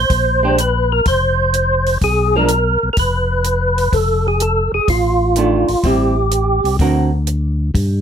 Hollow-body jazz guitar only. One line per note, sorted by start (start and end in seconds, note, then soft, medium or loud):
0.43 0.56 G#3 medium
0.43 0.57 D4 medium
0.43 0.57 G4 medium
2.36 2.48 F3 medium
2.36 2.48 G#3 medium
2.36 2.49 D4 medium
5.36 5.66 D#3 medium
5.36 5.66 A3 medium
5.36 5.67 D4 medium
5.84 6.13 G3 soft
5.84 6.14 C4 medium
5.84 6.14 E4 medium
6.81 7.10 D3 medium
6.81 7.09 C4 medium
6.81 7.10 F#4 medium
6.81 7.10 A#4 medium